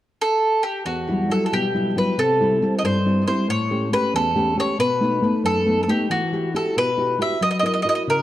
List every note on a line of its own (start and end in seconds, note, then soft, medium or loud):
0.21 0.62 A4 medium
0.63 0.85 G4 medium
0.85 1.29 E2 medium
0.85 1.32 F#4 soft
1.08 1.27 F#3 soft
1.08 1.28 G3 soft
1.08 1.28 E4 soft
1.29 1.65 F#3 soft
1.29 1.65 G3 soft
1.29 1.66 E4 soft
1.29 1.45 A4 medium
1.46 1.53 A4 soft
1.52 1.96 B2 medium
1.52 1.94 G4 medium
1.74 1.95 F#3 soft
1.74 1.95 G3 soft
1.74 1.96 E4 soft
1.96 2.14 F#3 soft
1.96 2.14 G3 soft
1.96 2.14 E4 soft
1.96 2.18 B4 medium
2.18 2.61 C3 medium
2.18 2.74 A4 medium
2.40 2.61 G3 soft
2.40 2.61 C4 soft
2.40 2.62 E4 soft
2.62 2.97 G3 soft
2.62 2.98 C4 soft
2.62 2.98 E4 soft
2.79 2.84 D#5 medium
2.83 3.26 G2 medium
2.83 3.25 C5 medium
3.05 3.26 G3 soft
3.05 3.26 C4 soft
3.05 3.27 E4 soft
3.27 3.45 G3 soft
3.27 3.45 C4 soft
3.27 3.45 E4 medium
3.27 3.50 C5 medium
3.48 3.91 A2 medium
3.48 3.90 C#5 medium
3.71 3.91 A3 soft
3.71 3.91 C#4 soft
3.71 3.91 G4 soft
3.92 4.27 A3 soft
3.92 4.28 C#4 soft
3.92 4.28 G4 medium
3.92 4.13 B4 medium
4.14 4.56 E2 medium
4.14 4.56 A4 medium
4.35 4.55 A3 soft
4.35 4.56 C#4 soft
4.35 4.56 G4 medium
4.56 4.74 A3 soft
4.56 4.75 C#4 soft
4.56 4.75 G4 medium
4.56 4.79 C#5 medium
4.79 5.22 B2 medium
4.79 5.41 B4 medium
5.00 5.20 A3 soft
5.00 5.20 B3 soft
5.00 5.21 D#4 medium
5.21 5.57 A3 soft
5.21 5.57 B3 soft
5.21 5.58 D#4 soft
5.44 5.87 F#2 medium
5.44 5.82 A4 medium
5.66 5.87 A3 soft
5.66 5.87 B3 soft
5.66 5.87 D#4 soft
5.83 5.89 A4 soft
5.88 6.06 A3 soft
5.88 6.06 B3 soft
5.88 6.06 D#4 soft
5.88 6.10 G4 medium
6.10 6.53 E3 medium
6.10 6.52 F#4 medium
6.32 6.53 E4 soft
6.32 6.53 F#4 soft
6.32 6.54 G4 medium
6.54 6.90 E4 soft
6.54 6.90 F#4 soft
6.54 6.90 G4 medium
6.54 6.76 A4 medium
6.76 7.19 B2 medium
6.76 7.18 B4 medium
6.97 7.17 E4 soft
6.97 7.18 F#4 soft
6.97 7.18 G4 soft
7.18 7.36 E4 soft
7.18 7.37 F#4 soft
7.18 7.37 G4 soft
7.18 7.41 E5 medium
7.41 7.83 F#3 medium
7.41 7.49 D#5 medium
7.51 7.57 D#5 medium
7.59 7.83 E4 soft
7.59 7.84 F#4 soft
7.59 7.65 D#5 medium
7.64 7.84 A#4 medium
7.64 7.72 D#5 medium
7.74 7.79 D#5 medium
7.82 8.19 E4 soft
7.82 8.20 F#4 soft
7.82 8.20 A#4 soft
7.82 7.87 D#5 medium
7.89 7.94 D#5 medium
7.95 8.01 D#5 medium
8.07 8.22 C#3 medium
8.07 8.22 A#4 medium